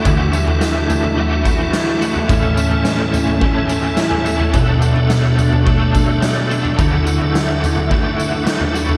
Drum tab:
TB |x-x-x-x---x-x-x-|x-x-x-x---x-x-x-|x-x-x-x---x-x-x-|x-x-x-x---x-x-x-|
SD |----o-------o---|----o-------o---|----o-------o---|----o-------o---|
FT |o--o--oo-------o|o--o--oo-----o-o|o--o--oo-------o|o--o--oo-----o-o|
BD |o---------o-----|o-------o-------|o-------o-o-----|o-------o-------|